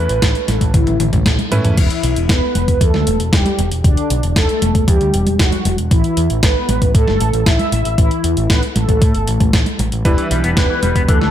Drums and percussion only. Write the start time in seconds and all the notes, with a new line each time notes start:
0.09 closed hi-hat
0.22 kick, snare, closed hi-hat
0.35 closed hi-hat
0.48 snare, closed hi-hat, high conga
0.61 kick, closed hi-hat
0.74 kick, closed hi-hat, high tom
0.87 closed hi-hat, high tom
1.00 closed hi-hat, high tom
1.13 kick, closed hi-hat, mid tom, high conga
1.26 kick, snare, closed hi-hat, mid tom
1.39 closed hi-hat, high conga
1.52 closed hi-hat, mid tom, high conga
1.65 closed hi-hat, mid tom
1.77 kick, closed hi-hat, crash
1.90 closed hi-hat
2.03 closed hi-hat
2.16 closed hi-hat
2.29 kick, snare, closed hi-hat
2.55 closed hi-hat, high conga
2.68 kick, closed hi-hat
2.81 kick, closed hi-hat
2.94 snare, high conga
3.07 closed hi-hat
3.20 closed hi-hat
3.33 kick, snare, closed hi-hat
3.46 closed hi-hat, high conga
3.59 closed hi-hat
3.72 closed hi-hat
3.84 kick, closed hi-hat
3.97 closed hi-hat
4.10 closed hi-hat
4.23 closed hi-hat
4.36 kick, snare, closed hi-hat
4.49 closed hi-hat
4.62 closed hi-hat, high conga
4.75 kick, closed hi-hat
4.88 kick, closed hi-hat
5.01 closed hi-hat
5.14 closed hi-hat
5.27 closed hi-hat, high conga
5.39 kick, snare, closed hi-hat
5.52 closed hi-hat, high conga
5.65 closed hi-hat, high conga
5.78 closed hi-hat
5.91 kick, closed hi-hat
6.04 closed hi-hat
6.17 closed hi-hat
6.30 closed hi-hat
6.43 kick, snare, closed hi-hat
6.69 closed hi-hat, high conga
6.82 kick, closed hi-hat
6.95 kick, closed hi-hat
7.08 snare, high conga
7.21 closed hi-hat
7.33 closed hi-hat
7.46 kick, snare, closed hi-hat
7.59 closed hi-hat, high conga
7.72 closed hi-hat
7.85 closed hi-hat
7.98 kick, closed hi-hat
8.11 closed hi-hat
8.24 closed hi-hat
8.37 closed hi-hat
8.50 kick, snare, closed hi-hat
8.63 closed hi-hat
8.76 closed hi-hat, high conga
8.89 kick, closed hi-hat
9.02 kick, closed hi-hat
9.15 closed hi-hat
9.27 closed hi-hat
9.40 kick, closed hi-hat, high conga
9.53 kick, snare, closed hi-hat
9.66 closed hi-hat, high conga
9.79 closed hi-hat, high conga
9.92 closed hi-hat
10.05 kick, closed hi-hat
10.18 closed hi-hat
10.31 closed hi-hat
10.44 closed hi-hat
10.57 kick, snare, closed hi-hat
10.83 closed hi-hat, high conga
10.96 kick, closed hi-hat
11.08 kick, closed hi-hat
11.22 snare, high conga